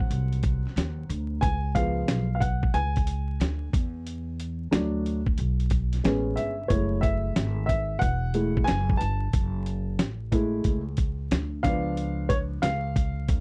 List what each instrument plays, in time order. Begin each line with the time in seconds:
Already playing: upright piano F#3 A#3 C4 F#5
0.10 upright bass C2, closed hi-hat
0.33 closed hi-hat
0.43 kick, closed hi-hat
0.65 muted upright bass stroke, snare
0.76 upright bass D#2, snare, closed hi-hat
1.09 upright bass D2, closed hi-hat
1.41 upright bass C#2, upright piano G#5, kick, closed hi-hat
1.75 upright piano F3 G#3 B3 F5, kick, closed hi-hat
2.08 upright bass B1, snare, closed hi-hat
2.35 upright piano F5
2.40 upright piano F#5, kick, closed hi-hat
2.63 kick
2.74 upright bass C#2, upright piano G#5, closed hi-hat
2.96 kick, closed hi-hat
3.07 closed hi-hat
3.40 upright bass D2, snare, closed hi-hat
3.73 upright bass E2, kick, closed hi-hat
4.07 closed hi-hat
4.40 closed hi-hat
4.71 upright bass D2, upright piano F#3 A3 D4, snare, closed hi-hat
5.06 closed hi-hat
5.27 kick
5.38 upright bass B1, closed hi-hat
5.60 closed hi-hat
5.70 kick, closed hi-hat
5.93 snare, closed hi-hat
6.04 upright bass A1, upright piano G#3 B3 C#4, snare, closed hi-hat
6.36 upright bass G1, upright piano E5, closed hi-hat
6.68 upright bass F#1, upright piano G#3 A3 E4 C#5, kick, closed hi-hat
7.01 upright piano E5, kick, closed hi-hat
7.36 upright bass G#1, snare, closed hi-hat
7.66 upright piano E5, kick, closed hi-hat
7.99 upright bass E1, upright piano F#5, kick, closed hi-hat
8.34 upright piano G#3 A3 E4, closed hi-hat
8.57 kick
8.64 upright piano G#5, snare, closed hi-hat
8.69 upright bass F#1
8.90 kick
8.97 upright bass G1, upright piano A5, closed hi-hat
9.33 upright bass F#1, kick, closed hi-hat
9.66 closed hi-hat
9.99 upright bass A1, snare, closed hi-hat
10.32 upright piano G#3 A3 E4, kick, closed hi-hat
10.64 upright bass C#2, kick, closed hi-hat
10.97 kick, closed hi-hat
11.31 upright bass D2, snare, closed hi-hat
11.63 upright bass C#2, upright piano F3 B3 D4 F5, kick, closed hi-hat
11.97 closed hi-hat
12.29 upright piano C#5, kick, closed hi-hat
12.62 upright bass C#2, upright piano F5, snare, closed hi-hat
12.96 kick, closed hi-hat
13.28 upright bass D2, kick, closed hi-hat